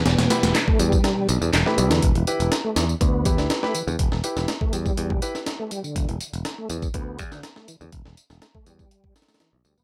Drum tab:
HH |x-x-x-x-x---x---x---x---x---x-x-|x-x-x-x-x---x---x---x---x---x---|x---x---x---x---x---x---x---x---|x-x-x-x-x---x---x---x---x---x---|
TB |x---x-x-x---x-x-x---x-x-x---x-x-|x---x-x-x---x-x-x---x-x-x---x-x-|x---x-x-x---x-x-x---x-x-x---x-x-|x---x-x-x---x-x-x---x-x-x---x-x-|
CP |--------x---------------x-------|--------------------------------|--------------------------------|--------------------------------|
SD |o-o-o-o-o-------o-------o-o---o-|--------o---o---------o-o-o-----|--o---o-o-------------o-o-------|--------o-------------o-o-o-----|
BD |----------o---o-----------------|o---------------o---o-----------|o---------o---o---o-------------|o-------------o-o---o-----------|

HH |x---x---x---x---x---xxxxx-------|
TB |x---x-x-x---x-x-x---x-x-x---x-x-|
CP |--------------------------------|
SD |--o---o-o-----------ooooo-------|
BD |o---------o---o---o-------------|